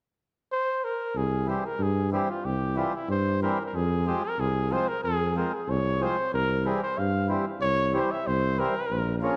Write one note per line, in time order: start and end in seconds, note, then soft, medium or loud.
0.52 0.86 C5 medium
0.84 1.18 A#4 medium
1.16 1.54 C2 medium
1.16 1.49 G#4 medium
1.46 1.63 E3 medium
1.46 1.64 G3 medium
1.46 1.64 C4 medium
1.46 1.67 G4 medium
1.65 1.84 A#4 medium
1.79 2.18 G2 medium
1.79 2.12 G#4 medium
2.12 2.28 E3 medium
2.12 2.29 G3 medium
2.12 2.29 C4 medium
2.12 2.31 G4 medium
2.29 2.46 F4 medium
2.45 2.84 C2 medium
2.45 2.79 G4 medium
2.76 2.93 E3 medium
2.76 2.93 G3 medium
2.76 2.93 C4 medium
2.76 2.96 F4 medium
2.95 3.10 E4 medium
3.08 3.47 G2 medium
3.08 3.40 C5 medium
3.42 3.58 E3 medium
3.42 3.58 G3 soft
3.42 3.58 C4 medium
3.42 3.65 A#4 medium
3.65 3.77 A#4 medium
3.74 4.13 F2 medium
3.74 4.09 G#4 medium
4.06 4.22 F3 medium
4.06 4.23 G#3 soft
4.06 4.23 C4 medium
4.06 4.25 G4 medium
4.23 4.41 A#4 medium
4.39 4.77 C2 medium
4.39 4.74 G#4 medium
4.71 4.87 F3 medium
4.71 4.87 G#3 medium
4.71 4.87 C4 medium
4.71 4.90 C5 medium
4.88 5.03 A#4 medium
5.04 5.43 F2 medium
5.04 5.39 G#4 medium
5.35 5.51 F3 medium
5.35 5.52 G#3 soft
5.35 5.52 C4 medium
5.35 5.55 A#4 medium
5.54 5.72 G#4 medium
5.69 6.07 C2 loud
5.69 6.04 C#5 medium
6.00 6.16 F3 medium
6.00 6.17 G#3 soft
6.00 6.17 C4 medium
6.00 6.33 C5 medium
6.34 6.72 C2 medium
6.34 6.68 A#4 medium
6.65 6.81 E3 soft
6.65 6.81 G3 soft
6.65 6.81 C4 medium
6.65 6.82 G#4 medium
6.82 7.00 C5 medium
6.98 7.36 G2 medium
6.98 7.30 F5 medium
7.28 7.45 E3 medium
7.28 7.45 G3 soft
7.28 7.45 C4 medium
7.61 8.00 C2 medium
7.61 7.97 C#5 loud
7.93 8.09 E3 medium
7.93 8.10 G3 medium
7.93 8.10 C4 medium
7.93 8.13 C5 medium
8.11 8.28 E5 medium
8.27 8.66 C2 medium
8.27 8.61 C5 medium
8.58 8.74 E3 medium
8.58 8.75 G3 medium
8.58 8.75 C4 medium
8.58 9.18 A#4 medium
8.91 9.29 A#1 medium
9.19 9.36 F3 medium
9.19 9.25 A#4 soft
9.23 9.36 A#3 soft
9.23 9.36 C#4 medium
9.23 9.36 G#4 medium